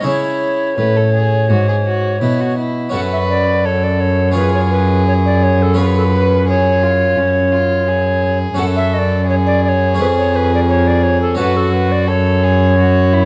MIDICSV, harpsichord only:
0, 0, Header, 1, 2, 480
1, 0, Start_track
1, 0, Key_signature, 3, "minor"
1, 0, Tempo, 720288
1, 35, Time_signature, 4, 2, 24, 8
1, 2435, Tempo, 701754
1, 8999, End_track
2, 0, Start_track
2, 0, Title_t, "Harpsichord"
2, 0, Program_c, 0, 6
2, 4, Note_on_c, 0, 61, 35
2, 17, Note_on_c, 0, 64, 33
2, 26, Note_on_c, 0, 68, 33
2, 36, Note_on_c, 0, 49, 38
2, 494, Note_off_c, 0, 49, 0
2, 521, Note_on_c, 0, 45, 41
2, 976, Note_off_c, 0, 45, 0
2, 1000, Note_on_c, 0, 44, 40
2, 1453, Note_off_c, 0, 44, 0
2, 1477, Note_on_c, 0, 47, 39
2, 1921, Note_off_c, 0, 61, 0
2, 1927, Note_off_c, 0, 64, 0
2, 1929, Note_on_c, 0, 61, 38
2, 1932, Note_off_c, 0, 68, 0
2, 1934, Note_off_c, 0, 47, 0
2, 1940, Note_on_c, 0, 66, 34
2, 1951, Note_on_c, 0, 69, 34
2, 1959, Note_on_c, 0, 42, 39
2, 2874, Note_off_c, 0, 61, 0
2, 2879, Note_off_c, 0, 66, 0
2, 2885, Note_off_c, 0, 69, 0
2, 2888, Note_on_c, 0, 61, 39
2, 2895, Note_on_c, 0, 65, 38
2, 2908, Note_on_c, 0, 68, 38
2, 3841, Note_off_c, 0, 61, 0
2, 3844, Note_off_c, 0, 65, 0
2, 3851, Note_off_c, 0, 68, 0
2, 3860, Note_on_c, 0, 61, 38
2, 3869, Note_on_c, 0, 65, 37
2, 3879, Note_on_c, 0, 68, 39
2, 5770, Note_off_c, 0, 61, 0
2, 5775, Note_off_c, 0, 65, 0
2, 5779, Note_on_c, 0, 61, 41
2, 5780, Note_off_c, 0, 42, 0
2, 5780, Note_off_c, 0, 68, 0
2, 5789, Note_on_c, 0, 66, 38
2, 5798, Note_on_c, 0, 69, 37
2, 5809, Note_on_c, 0, 42, 42
2, 6725, Note_off_c, 0, 61, 0
2, 6730, Note_off_c, 0, 66, 0
2, 6734, Note_off_c, 0, 69, 0
2, 6737, Note_on_c, 0, 61, 45
2, 6740, Note_off_c, 0, 42, 0
2, 6748, Note_on_c, 0, 68, 41
2, 6770, Note_on_c, 0, 41, 51
2, 7679, Note_off_c, 0, 61, 0
2, 7684, Note_off_c, 0, 68, 0
2, 7695, Note_off_c, 0, 41, 0
2, 7696, Note_on_c, 0, 61, 42
2, 7706, Note_on_c, 0, 66, 42
2, 7716, Note_on_c, 0, 69, 43
2, 7728, Note_on_c, 0, 42, 47
2, 8999, Note_off_c, 0, 42, 0
2, 8999, Note_off_c, 0, 61, 0
2, 8999, Note_off_c, 0, 66, 0
2, 8999, Note_off_c, 0, 69, 0
2, 8999, End_track
0, 0, End_of_file